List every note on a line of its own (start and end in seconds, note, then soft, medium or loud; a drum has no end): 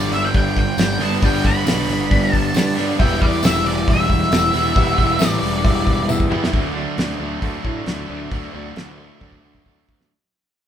0.00 0.99 G2 medium
0.00 0.99 D3 medium
0.00 1.00 G3 loud
0.00 0.99 B3 loud
0.00 0.26 D4 medium
0.00 0.97 D4 medium
0.00 0.26 G4 medium
0.00 0.26 B4 medium
0.00 0.13 D5 medium
0.00 0.26 D5 medium
0.11 0.30 G1 medium
0.11 0.24 E5 medium
0.11 open hi-hat medium
0.25 0.36 G5 medium
0.34 0.72 G1 medium
0.34 0.69 D4 medium
0.34 0.70 G4 medium
0.34 0.70 B4 medium
0.34 0.69 D5 medium
0.34 0.58 G5 medium
0.34 kick loud
0.34 open hi-hat medium
0.56 1.03 G5 loud
0.56 kick medium
0.56 open hi-hat medium
0.78 0.97 G1 loud
0.78 1.14 D4 medium
0.78 1.14 G4 medium
0.78 1.14 B4 medium
0.78 1.14 D5 medium
0.78 snare loud
0.78 open hi-hat medium
0.78 tambourine medium
0.98 1.18 G1 loud
0.98 1.20 G2 medium
0.98 1.21 D3 medium
0.98 1.22 G3 medium
0.98 1.24 B3 medium
0.98 1.20 D4 medium
0.98 snare soft
0.98 open hi-hat medium
1.03 1.25 A5 loud
1.21 1.41 G1 loud
1.21 2.75 G2 medium
1.21 2.75 D3 loud
1.21 2.77 G3 loud
1.21 2.76 B3 loud
1.21 1.58 D4 loud
1.21 2.74 D4 medium
1.21 1.58 G4 medium
1.21 1.58 B4 loud
1.21 1.58 D5 loud
1.21 kick loud
1.21 open hi-hat medium
1.25 1.47 G5 loud
1.44 1.63 G1 loud
1.44 2.32 B5 loud
1.44 kick medium
1.44 open hi-hat medium
1.66 1.85 B1 loud
1.66 2.02 D4 medium
1.66 2.02 G4 medium
1.66 2.02 B4 medium
1.66 2.02 D5 medium
1.66 snare loud
1.66 open hi-hat medium
1.66 tambourine loud
1.88 2.07 G1 medium
1.88 open hi-hat medium
2.11 2.29 G1 loud
2.11 2.46 D4 loud
2.11 2.47 G4 medium
2.11 2.46 B4 medium
2.11 2.47 D5 medium
2.11 kick loud
2.11 open hi-hat medium
2.32 2.52 G1 medium
2.32 2.73 A5 loud
2.32 kick medium
2.32 open hi-hat medium
2.54 2.92 G2 loud
2.54 2.90 D4 medium
2.54 2.90 G4 medium
2.54 2.91 B4 medium
2.54 2.90 D5 loud
2.54 snare loud
2.54 open hi-hat medium
2.54 tambourine medium
2.75 2.98 G2 medium
2.75 2.97 D3 medium
2.75 2.98 G3 medium
2.75 2.99 B3 medium
2.75 2.97 D4 loud
2.75 open hi-hat medium
2.80 snare soft
2.97 3.18 E1 loud
2.97 4.51 E3 medium
2.97 4.52 G3 loud
2.97 4.52 B3 loud
2.97 3.34 E4 loud
2.97 4.50 E4 loud
2.97 3.34 G4 medium
2.97 3.34 B4 medium
2.97 3.34 E5 loud
2.97 3.22 G5 loud
2.97 kick loud
2.97 open hi-hat medium
3.21 3.40 E2 loud
3.21 3.44 D5 loud
3.21 kick medium
3.21 open hi-hat medium
3.43 3.61 E1 loud
3.43 3.78 E4 medium
3.43 3.78 G4 medium
3.43 3.78 B4 medium
3.43 3.78 E5 medium
3.43 3.66 E5 loud
3.43 snare loud
3.43 open hi-hat loud
3.43 tambourine loud
3.65 3.83 E1 medium
3.65 3.88 D5 loud
3.65 open hi-hat medium
3.87 4.24 E1 loud
3.87 4.22 E4 medium
3.87 4.22 G4 medium
3.87 4.22 B4 medium
3.87 4.22 E5 medium
3.87 5.29 E5 medium
3.87 kick loud
3.87 open hi-hat medium
4.10 kick medium
4.10 open hi-hat medium
4.22 snare soft
4.31 4.49 E1 loud
4.31 4.66 E4 medium
4.31 4.66 G4 medium
4.31 4.66 B4 medium
4.31 4.66 E5 medium
4.31 snare loud
4.31 open hi-hat medium
4.31 tambourine medium
4.52 4.72 E1 loud
4.52 4.73 E3 medium
4.52 4.74 G3 medium
4.52 4.74 B3 medium
4.52 4.73 E4 medium
4.52 open hi-hat medium
4.74 4.94 E1 loud
4.74 6.28 E3 medium
4.74 6.29 G3 loud
4.74 6.30 B3 loud
4.74 5.10 E4 loud
4.74 6.29 E4 loud
4.74 5.11 G4 loud
4.74 5.11 B4 loud
4.74 5.11 F#5 loud
4.74 kick loud
4.74 open hi-hat medium
4.98 5.16 E1 loud
4.98 kick medium
4.98 open hi-hat medium
5.19 5.38 A1 loud
5.19 5.55 E4 medium
5.19 5.55 G4 medium
5.19 5.55 B4 medium
5.19 5.55 E5 loud
5.19 snare loud
5.19 open hi-hat medium
5.19 tambourine loud
5.29 6.05 D5 medium
5.42 5.61 E1 medium
5.42 open hi-hat medium
5.64 5.83 E1 medium
5.64 5.99 E4 medium
5.64 6.00 G4 medium
5.64 5.99 B4 medium
5.64 5.99 E5 loud
5.64 kick loud
5.64 open hi-hat medium
5.87 6.05 E1 medium
5.87 kick medium
5.87 open hi-hat medium
6.08 6.46 E2 loud
6.08 6.44 E4 medium
6.08 6.44 G4 medium
6.08 6.44 B4 medium
6.08 6.44 E5 loud
6.08 high tom medium
6.08 tambourine medium
6.20 kick medium
6.30 6.51 E3 medium
6.30 6.52 G3 medium
6.30 6.52 B3 medium
6.30 6.51 E4 medium
6.30 mid tom loud
6.44 snare medium
6.52 6.85 D2 medium
6.52 6.96 D3 medium
6.52 6.77 F#3 medium
6.52 6.76 A3 medium
6.52 6.74 D4 loud
6.52 kick loud
6.52 open hi-hat soft
6.74 6.97 F#3 medium
6.74 6.98 A3 medium
6.74 6.99 D4 medium
6.96 7.14 D2 medium
6.96 7.21 D3 medium
6.96 7.20 F#3 medium
6.96 7.19 A3 medium
6.96 7.18 D4 medium
6.96 snare loud
6.96 open hi-hat medium
7.11 snare soft
7.19 7.36 D2 medium
7.19 7.40 D3 medium
7.19 7.42 F#3 medium
7.19 7.42 A3 medium
7.19 7.44 D4 medium
7.41 7.58 D2 medium
7.41 7.85 D3 medium
7.41 7.66 F#3 medium
7.41 7.65 A3 medium
7.41 7.63 D4 medium
7.41 kick medium
7.41 open hi-hat soft
7.63 7.80 A2 medium
7.63 7.86 F#3 medium
7.63 7.87 A3 medium
7.63 7.88 D4 medium
7.63 kick medium
7.86 8.03 D2 medium
7.86 8.11 D3 medium
7.86 8.10 F#3 medium
7.86 8.09 A3 medium
7.86 8.08 D4 medium
7.86 snare loud
7.86 open hi-hat soft
8.08 8.26 D2 medium
8.08 8.29 D3 medium
8.08 8.30 F#3 medium
8.08 8.31 A3 medium
8.08 8.32 D4 medium
8.30 8.47 D2 medium
8.30 8.73 D3 medium
8.30 8.54 F#3 medium
8.30 8.53 A3 medium
8.30 8.51 D4 medium
8.30 kick loud
8.30 open hi-hat soft
8.52 8.70 D2 medium
8.52 8.74 F#3 medium
8.52 8.75 A3 medium
8.52 8.76 D4 medium
8.74 9.09 D2 medium
8.74 8.98 D3 medium
8.74 8.97 F#3 medium
8.74 8.96 A3 medium
8.74 8.95 D4 medium
8.74 snare loud
8.74 open hi-hat soft
8.96 9.18 D3 medium
8.96 9.19 F#3 medium
8.96 9.20 A3 medium
8.96 9.21 D4 medium
9.19 9.37 D2 medium
9.19 9.63 D3 medium
9.19 9.43 F#3 medium
9.19 9.42 A3 medium
9.19 9.40 D4 medium
9.19 kick medium
9.32 kick soft
9.41 9.59 D2 medium
9.41 9.64 F#3 medium
9.41 9.65 A3 medium
9.41 9.66 D4 medium
9.55 kick medium
9.64 9.82 D2 medium
9.64 9.88 D3 medium
9.64 9.87 F#3 medium
9.64 9.86 A3 medium
9.64 9.85 D4 medium
9.64 kick medium
9.86 10.05 D2 medium
9.86 10.10 D3 medium
9.86 10.09 F#3 medium
9.86 10.09 A3 medium
9.86 10.08 D4 medium
9.86 kick medium
10.01 snare medium